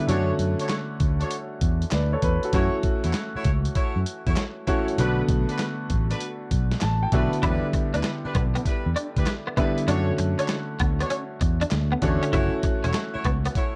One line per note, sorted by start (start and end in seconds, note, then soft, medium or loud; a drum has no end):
0.07 0.30 F#2 medium
0.07 1.23 D3 medium
0.07 1.23 A3 medium
0.07 1.23 C#4 medium
0.07 0.31 D4 medium
0.07 0.31 F#4 medium
0.07 1.24 F#4 medium
0.07 0.31 A4 medium
0.07 0.31 C#5 loud
0.07 closed hi-hat medium
0.39 0.54 F#2 medium
0.39 closed hi-hat medium
0.59 0.75 D4 medium
0.59 0.75 F#4 medium
0.59 0.75 A4 medium
0.59 0.75 C#5 medium
0.59 closed hi-hat soft
0.69 snare loud
0.69 clap medium
0.69 closed hi-hat medium
1.00 1.22 D2 medium
1.00 kick medium
1.00 closed hi-hat medium
1.20 1.36 D4 medium
1.20 1.36 F#4 medium
1.20 1.36 A4 medium
1.20 1.36 C#5 medium
1.20 closed hi-hat soft
1.31 closed hi-hat medium
1.61 1.83 E2 medium
1.61 kick medium
1.61 closed hi-hat medium
1.82 closed hi-hat soft
1.91 2.14 D2 loud
1.91 2.12 B4 soft
1.91 2.12 D5 medium
1.91 snare loud
1.91 clap medium
1.91 closed hi-hat medium
2.13 2.23 A4 medium
2.13 2.22 C#5 medium
2.22 2.37 E2 medium
2.22 2.42 B4 medium
2.22 kick medium
2.22 closed hi-hat medium
2.43 2.53 F#4 medium
2.43 2.73 A4 medium
2.43 closed hi-hat soft
2.53 2.68 F#2 loud
2.53 3.68 E3 medium
2.53 3.68 A3 medium
2.53 3.69 C#4 medium
2.53 2.76 E4 medium
2.53 2.76 F#4 medium
2.53 3.69 F#4 medium
2.53 2.76 A4 medium
2.53 2.76 C#5 loud
2.53 kick loud
2.53 closed hi-hat medium
2.83 kick loud
2.83 closed hi-hat medium
3.04 3.12 E2 medium
3.04 3.19 E4 medium
3.04 3.19 F#4 medium
3.04 3.20 A4 medium
3.04 3.20 C#5 medium
3.04 closed hi-hat medium
3.13 snare loud
3.13 clap medium
3.13 closed hi-hat medium
3.35 3.50 E4 medium
3.35 3.50 F#4 medium
3.35 3.50 A4 medium
3.35 3.50 C#5 medium
3.35 muted fingered electric bass stroke soft
3.44 3.67 C#2 medium
3.44 kick medium
3.44 closed hi-hat medium
3.65 closed hi-hat medium
3.75 3.98 E4 medium
3.75 3.99 F#4 medium
3.75 3.99 A4 medium
3.75 3.99 C#5 medium
3.75 kick medium
3.75 closed hi-hat medium
3.96 4.03 F#2 medium
4.06 closed hi-hat medium
4.26 4.34 E2 medium
4.26 4.42 E4 medium
4.26 4.42 F#4 medium
4.26 4.42 A4 medium
4.26 4.42 C#5 medium
4.26 kick medium
4.26 closed hi-hat soft
4.37 snare loud
4.37 clap medium
4.37 closed hi-hat medium
4.67 4.96 E3 medium
4.67 4.96 A3 medium
4.67 4.96 C#4 medium
4.67 4.90 E4 medium
4.67 4.90 F#4 medium
4.67 4.97 F#4 medium
4.67 4.90 A4 medium
4.67 4.91 C#5 medium
4.67 kick medium
4.67 closed hi-hat medium
4.88 closed hi-hat soft
4.97 5.20 B1 loud
4.97 6.13 D3 medium
4.97 6.14 A3 medium
4.97 6.14 B3 medium
4.97 5.21 D4 medium
4.97 5.21 F#4 medium
4.97 6.14 F#4 medium
4.97 5.21 A4 medium
4.97 5.21 B4 loud
4.97 closed hi-hat medium
5.28 5.43 B1 loud
5.28 kick medium
5.28 closed hi-hat medium
5.49 5.64 D4 medium
5.49 5.64 F#4 medium
5.49 5.64 A4 medium
5.49 5.65 B4 medium
5.49 closed hi-hat soft
5.59 snare loud
5.59 clap medium
5.59 closed hi-hat medium
5.90 6.12 A1 medium
5.90 kick medium
5.90 closed hi-hat medium
6.10 6.25 D4 medium
6.10 6.26 F#4 medium
6.10 6.26 A4 medium
6.10 6.26 B4 medium
6.10 closed hi-hat soft
6.20 closed hi-hat medium
6.51 6.73 B1 medium
6.51 kick medium
6.51 closed hi-hat medium
6.71 snare medium
6.71 closed hi-hat soft
6.81 7.04 A1 medium
6.81 7.01 A5 medium
6.81 snare loud
6.81 clap medium
6.81 closed hi-hat medium
7.03 7.12 G5 medium
7.12 7.27 B1 medium
7.12 7.41 D3 medium
7.12 7.41 A3 medium
7.12 7.41 B3 medium
7.12 7.35 D4 medium
7.12 7.35 F#4 medium
7.12 7.42 F#4 medium
7.12 7.35 A4 medium
7.12 7.35 B4 medium
7.12 7.41 E5 medium
7.12 kick medium
7.12 closed hi-hat medium
7.33 closed hi-hat soft
7.42 7.58 E2 loud
7.42 8.58 D3 medium
7.42 7.52 F#3 medium
7.42 8.58 B3 medium
7.42 7.66 D4 medium
7.42 7.66 E4 medium
7.42 7.54 E4 medium
7.42 8.58 E4 medium
7.42 7.66 G4 medium
7.42 7.66 B4 loud
7.42 kick loud
7.42 closed hi-hat medium
7.49 8.61 G3 medium
7.73 muted clean electric guitar stroke soft
7.73 kick medium
7.73 closed hi-hat medium
7.94 8.01 D2 medium
7.94 8.09 D4 medium
7.94 8.00 D4 medium
7.94 8.09 E4 medium
7.94 8.09 G4 medium
7.94 8.09 B4 medium
7.94 closed hi-hat medium
8.03 muted clean electric guitar stroke soft
8.03 snare loud
8.03 clap medium
8.03 closed hi-hat medium
8.24 8.40 D4 medium
8.24 8.40 E4 medium
8.24 8.40 G4 medium
8.24 8.40 B4 medium
8.24 muted fingered electric bass stroke soft
8.35 8.57 B1 medium
8.35 8.46 B3 medium
8.35 kick medium
8.35 closed hi-hat medium
8.55 8.61 B3 medium
8.55 closed hi-hat soft
8.65 8.88 D4 medium
8.65 8.88 E4 medium
8.65 8.88 G4 medium
8.65 8.89 B4 medium
8.65 kick medium
8.65 closed hi-hat medium
8.86 8.93 E2 loud
8.96 9.07 D4 medium
8.96 closed hi-hat medium
9.16 9.24 D2 medium
9.16 9.32 D4 medium
9.16 9.32 E4 medium
9.16 9.32 G4 medium
9.16 9.32 B4 medium
9.16 kick medium
9.16 closed hi-hat soft
9.27 muted clean electric guitar stroke soft
9.27 snare loud
9.27 clap medium
9.27 closed hi-hat medium
9.47 9.53 B3 medium
9.57 9.86 D3 medium
9.57 9.86 G3 medium
9.57 9.69 B3 medium
9.57 9.86 B3 medium
9.57 9.80 D4 medium
9.57 9.80 E4 medium
9.57 9.86 E4 medium
9.57 9.80 G4 medium
9.57 9.80 B4 medium
9.57 kick medium
9.57 closed hi-hat medium
9.78 closed hi-hat soft
9.87 10.10 F#2 loud
9.87 11.03 D3 medium
9.87 11.03 A3 medium
9.87 11.03 C#4 medium
9.87 10.11 D4 medium
9.87 9.99 D4 medium
9.87 10.11 F#4 medium
9.87 11.03 F#4 medium
9.87 10.11 A4 medium
9.87 10.11 C#5 loud
9.87 closed hi-hat medium
10.18 10.33 F#2 medium
10.18 muted clean electric guitar stroke soft
10.18 closed hi-hat medium
10.38 10.45 C#4 medium
10.38 10.54 D4 medium
10.38 10.54 F#4 medium
10.38 10.54 A4 medium
10.38 10.54 C#5 medium
10.38 closed hi-hat medium
10.48 muted clean electric guitar stroke soft
10.48 snare loud
10.48 clap medium
10.48 closed hi-hat medium
10.79 11.02 D2 medium
10.79 10.91 B3 medium
10.79 kick medium
10.79 closed hi-hat medium
11.00 11.06 B3 medium
11.00 11.15 D4 medium
11.00 11.15 F#4 medium
11.00 11.16 A4 medium
11.00 11.16 C#5 medium
11.00 closed hi-hat soft
11.10 11.22 C#4 medium
11.10 closed hi-hat medium
11.41 11.63 E2 medium
11.41 muted clean electric guitar stroke soft
11.41 kick medium
11.41 closed hi-hat medium
11.61 11.67 D4 medium
11.61 closed hi-hat soft
11.71 11.94 D2 loud
11.71 snare loud
11.71 clap medium
11.71 closed hi-hat medium
11.92 11.97 B3 medium
12.02 12.17 E2 medium
12.02 12.31 D3 medium
12.02 12.31 A3 medium
12.02 12.31 C#4 medium
12.02 12.25 D4 medium
12.02 12.25 F#4 medium
12.02 12.31 F#4 medium
12.02 12.25 A4 medium
12.02 12.25 C#5 medium
12.02 muted clean electric guitar stroke soft
12.02 kick medium
12.02 closed hi-hat medium
12.23 12.28 C#4 medium
12.23 closed hi-hat soft
12.32 12.48 F#1 loud
12.32 13.48 E3 medium
12.32 13.48 A3 medium
12.32 13.48 C#4 medium
12.32 12.56 E4 medium
12.32 12.44 E4 medium
12.32 12.56 F#4 medium
12.32 13.48 F#4 medium
12.32 12.56 A4 medium
12.32 12.56 C#5 loud
12.32 kick loud
12.32 closed hi-hat medium
12.63 muted clean electric guitar stroke soft
12.63 kick medium
12.63 closed hi-hat medium
12.84 12.91 E1 medium
12.84 12.90 C#4 medium
12.84 12.99 E4 medium
12.84 12.99 F#4 medium
12.84 12.99 A4 medium
12.84 12.99 C#5 medium
12.84 closed hi-hat medium
12.94 muted clean electric guitar stroke soft
12.94 snare loud
12.94 clap medium
12.94 closed hi-hat medium
13.14 13.30 E4 medium
13.14 13.30 F#4 medium
13.14 13.30 A4 medium
13.14 13.30 C#5 medium
13.14 muted fingered electric bass stroke soft
13.24 13.47 C#2 medium
13.24 13.36 B3 medium
13.24 kick medium
13.24 closed hi-hat medium
13.45 13.51 B3 medium
13.45 closed hi-hat medium
13.55 13.76 E4 medium
13.55 13.76 F#4 medium
13.55 13.76 A4 medium
13.55 13.76 C#5 medium
13.55 kick medium
13.55 closed hi-hat medium